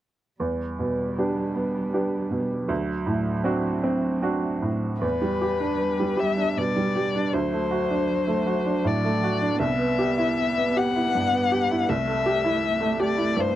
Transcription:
0.40 grand piano E2, cello G3
0.79 grand piano B2
1.18 grand piano B3 D4 G4
1.55 grand piano B3
1.93 grand piano B3 D4 G4
2.31 grand piano B2
2.69 grand piano D2, cello F#3
3.07 grand piano A2
3.44 grand piano C4 D4 F#4
3.83 grand piano C4
4.22 grand piano C4 D4 F#4
4.62 grand piano A2
5.01 grand piano E2, cello G3, violin B4
5.22 grand piano G3
5.42 grand piano G4
5.60 grand piano D4
6.00 grand piano G3
6.17 grand piano G4, violin E5
6.37 grand piano D4
6.57 grand piano B2, violin D5
6.77 grand piano G3
6.96 grand piano G4
7.15 grand piano D4
7.34 grand piano D2, cello F#3, violin C5
7.52 grand piano A3
7.71 grand piano F#4
7.91 grand piano D4
8.28 grand piano A3
8.47 grand piano F#4
8.66 grand piano D4
8.85 grand piano A2, violin D5
9.05 grand piano A3
9.23 grand piano F#4
9.41 grand piano D4
9.60 grand piano C2, cello B3, violin E5
9.79 grand piano B3
9.99 grand piano G4
10.18 grand piano E4
10.57 grand piano B3
10.77 grand piano G4, violin F#5
10.96 grand piano E4
11.15 grand piano G2
11.33 grand piano B3
11.52 grand piano G4
11.71 grand piano E4
11.89 grand piano C2, cello A3, violin E5
12.08 grand piano A3
12.26 grand piano G4
12.44 grand piano E4
12.81 grand piano A3
13.00 grand piano G4, violin D5
13.17 grand piano E4
13.36 grand piano G2
13.40 violin C5

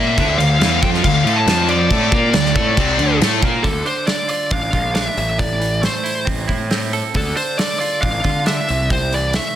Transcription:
Already playing: picked electric bass A#2, distorted electric guitar A#3 A#4, lead electric guitar E5
0.17 picked electric bass D2, distorted electric guitar D3 D4, kick, crash
0.38 picked electric bass D2, distorted electric guitar D3, lead electric guitar F5, crash
0.60 picked electric bass E2, distorted electric guitar E3, lead electric guitar F5, snare, crash
0.64 distorted electric guitar E4
0.82 picked electric bass F2, distorted electric guitar F3 F4, lead electric guitar G5, kick, crash
0.94 snare
1.04 picked electric bass D2, distorted electric guitar D3, lead electric guitar F5, kick, crash
1.24 picked electric bass A2, distorted electric guitar A3 A4, crash
1.36 lead electric guitar A5
1.46 picked electric bass F2, distorted electric guitar F3 F4, snare, crash
1.69 lead electric guitar D5, crash
1.90 picked electric bass A2, distorted electric guitar A3 A4, kick, crash
2.12 picked electric bass A#2, distorted electric guitar A#3 A#4, kick, crash
2.33 picked electric bass D2, distorted electric guitar D3, snare, crash
2.45 snare
2.55 picked electric bass A2, distorted electric guitar A3 A4, kick, crash
2.77 picked electric bass C2, distorted electric guitar C3 C4, kick, crash
2.99 picked electric bass D2, distorted electric guitar D3 D4, crash
3.19 picked electric bass A2, distorted electric guitar A3 A4, snare, crash
3.24 distorted electric guitar A4
3.42 picked electric bass A#2, distorted electric guitar A#3 A#4, kick, crash
3.46 distorted electric guitar A#4
3.63 picked electric bass D2, clean electric guitar D3, lead electric guitar A4, kick, open hi-hat
3.86 clean electric guitar D4, lead electric guitar C5, open hi-hat
4.06 clean electric guitar D3, lead electric guitar D5, snare, open hi-hat
4.28 clean electric guitar F4, lead electric guitar D5, open hi-hat
4.51 picked electric bass A1, clean electric guitar D4, lead electric guitar F5, kick, open hi-hat
4.73 picked electric bass A#1, clean electric guitar F4, kick, open hi-hat
4.95 clean electric guitar D4, lead electric guitar F5, snare, open hi-hat
5.06 lead electric guitar E5
5.16 picked electric bass A1, clean electric guitar A2, open hi-hat
5.38 clean electric guitar A2, lead electric guitar D5, kick, open hi-hat
5.60 clean electric guitar E3, open hi-hat
5.82 clean electric guitar A3, lead electric guitar C5, snare, open hi-hat
6.04 clean electric guitar E4, open hi-hat
6.25 picked electric bass A1, clean electric guitar C4, kick, open hi-hat
6.48 picked electric bass A2, clean electric guitar E4, kick, open hi-hat
6.71 clean electric guitar C4, snare, open hi-hat
6.93 clean electric guitar A4, open hi-hat
7.14 picked electric bass D2, clean electric guitar D3, lead electric guitar A4, kick, open hi-hat
7.36 clean electric guitar D4, lead electric guitar C5, open hi-hat
7.58 clean electric guitar D3, lead electric guitar D5, snare, open hi-hat
7.79 clean electric guitar F4, lead electric guitar D5, open hi-hat
8.01 picked electric bass A1, clean electric guitar D4, lead electric guitar F5, kick, open hi-hat
8.24 picked electric bass D3, clean electric guitar F4, kick, open hi-hat
8.46 clean electric guitar D4, lead electric guitar E5, snare, open hi-hat
8.68 picked electric bass C2, clean electric guitar C3, open hi-hat
8.90 clean electric guitar C3, lead electric guitar C5, kick, open hi-hat
9.13 clean electric guitar E3, lead electric guitar D5, open hi-hat
9.33 clean electric guitar A3, lead electric guitar E5, snare, open hi-hat

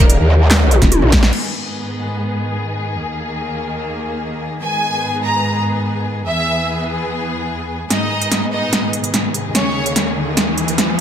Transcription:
Already playing: wobble bass D#1, string section D#3 D#4 G4 A#4, violin section A#3 A#4
0.10 closed hi-hat
0.20 wobble bass D#2
0.51 snare, clap, closed hi-hat
0.71 closed hi-hat, high tom
0.82 wobble bass D#1, kick, snare, closed hi-hat
0.92 closed hi-hat, mid tom
1.02 wobble bass A#1, mid tom
1.12 kick, snare, closed hi-hat
1.23 snare
1.33 string section G#2 D#3 B3 G#4, crash
2.97 string section D#2 A#3
4.62 string section G#2 B3 G#4, violin section G#5
5.23 violin section A#5
6.26 string section E2 E3 B3 G#4, violin section E5
7.90 string section G#2 D#3 B3 G#4, violin section D#4 D#5, snare, closed hi-hat, riser
8.22 closed hi-hat
8.32 snare, closed hi-hat
8.52 violin section D#4 D#5
8.73 snare, closed hi-hat
8.93 closed hi-hat
9.04 closed hi-hat
9.14 snare, closed hi-hat
9.34 closed hi-hat
9.55 string section D#2 A#3, violin section C#4 C#5, snare, closed hi-hat
9.86 closed hi-hat
9.96 snare, closed hi-hat
10.37 snare, closed hi-hat
10.58 closed hi-hat
10.68 closed hi-hat
10.78 snare, closed hi-hat

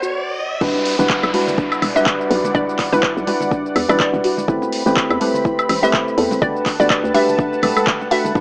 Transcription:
Already playing: fm bass G1, analog synth pad B3 F#4 A4, ambient pad A4 D5, riser
0.02 synth arpeggio sound F#4, shaker
0.61 fm bass E1, synth stab G3 D4 E4 F#4 B4, synth arpeggio sound D4, analog synth pad D5 F#5, kick, crash, downlifter, shaker
0.75 high bongo, shaker
0.86 open hi-hat
0.99 fm bass E1, synth stab G3 D4 E4 F#4 B4, synth arpeggio sound E4, shaker
1.10 kick, clap, shaker
1.23 fm bass B1, high bongo, high woodblock, shaker
1.33 synth stab G3 D4 E4 F#4 B4, synth arpeggio sound F#4, open hi-hat, high conga
1.48 low conga, shaker
1.58 synth arpeggio sound D4, kick, high bongo, shaker
1.72 high woodblock, shaker
1.82 fm bass E1, open hi-hat, high conga, high woodblock
1.95 synth stab G3 D4 E4 F#4 B4, synth arpeggio sound E4, synth pluck E5, high conga, shaker
2.06 kick, clap, high bongo, shaker
2.21 shaker
2.30 fm bass B1, synth arpeggio sound F#4, open hi-hat
2.44 high bongo, high conga, low conga, shaker
2.54 fm bass E1, synth stab G3 D4 E4 F#4 B4, synth arpeggio sound D4, synth pluck D5, kick, shaker
2.69 shaker
2.79 kick, clap, open hi-hat
2.92 fm bass E1, synth stab G3 D4 E4 F#4 B4, synth arpeggio sound E4, synth pluck B4, high bongo, shaker
3.03 synth pluck B4, kick, clap, shaker
3.17 fm bass B1, shaker
3.26 synth stab G3 D4 E4 F#4 B4, synth arpeggio sound F#4, open hi-hat, high bongo, high conga
3.40 low conga, shaker
3.51 synth arpeggio sound D4, kick, shaker
3.66 shaker
3.75 fm bass E2, open hi-hat, high bongo, high conga, high woodblock
3.88 fm bass A1, synth stab G3 D4 E4 F#4 B4, synth arpeggio sound E4, synth pluck D5, high conga, high woodblock, shaker
4.00 synth pluck D5, kick, clap, shaker
4.14 fm bass E1, high bongo, shaker
4.24 synth arpeggio sound F#4, open hi-hat
4.37 high conga, low conga, shaker
4.48 fm bass A1, synth stab A3 C4 E4 G4 B4, analog synth pad C4 B5, synth arpeggio sound E4, kick, shaker
4.62 high bongo, shaker
4.72 open hi-hat
4.86 fm bass A1, synth stab A3 C4 E4 G4 B4, synth arpeggio sound G4, shaker
4.97 kick, clap, high bongo, shaker
5.10 fm bass E2, high woodblock, shaker
5.20 synth stab A3 C4 E4 G4 B4, synth arpeggio sound A4, open hi-hat, high conga
5.34 low conga, shaker
5.45 synth arpeggio sound E4, kick, high bongo, shaker
5.59 high woodblock, shaker
5.69 fm bass A1, open hi-hat, high conga, high woodblock
5.82 synth stab A3 C4 E4 G4 B4, synth arpeggio sound G4, synth pluck E5, high bongo, high conga, shaker
5.93 kick, clap, shaker
6.08 shaker
6.18 fm bass E2, synth arpeggio sound A4, open hi-hat
6.31 high bongo, high conga, low conga, shaker
6.42 fm bass G1, synth stab A3 D4 F#4 G4 B4, synth arpeggio sound D4, analog synth pad B4 F#5 A5, synth pluck D5, kick, shaker
6.56 shaker
6.66 kick, clap, open hi-hat, high bongo
6.79 fm bass G1, synth stab A3 D4 F#4 G4 B4, synth arpeggio sound F#4, synth pluck D5, shaker
6.90 synth pluck D5, kick, clap, shaker
7.04 fm bass D2, shaker
7.14 synth stab A3 D4 F#4 G4 B4, synth arpeggio sound G4, synth pluck E5, open hi-hat, high bongo, high conga
7.29 low conga, shaker
7.39 synth arpeggio sound D4, kick, shaker
7.53 high bongo, shaker
7.62 fm bass D1, synth stab A3 D4 F#4 G4 B4, synth arpeggio sound B4, open hi-hat, high conga, high woodblock
7.76 synth arpeggio sound A4, high conga, high woodblock, shaker
7.87 kick, clap, shaker
8.01 high bongo, shaker
8.11 synth stab A3 D4 F#4 G4 B4, synth arpeggio sound F#4, synth pluck E5, open hi-hat
8.24 high conga, low conga, shaker
8.35 fm bass E1, synth stab G3 D4 E4 F#4 B4, synth arpeggio sound D4, analog synth pad D5, kick, shaker

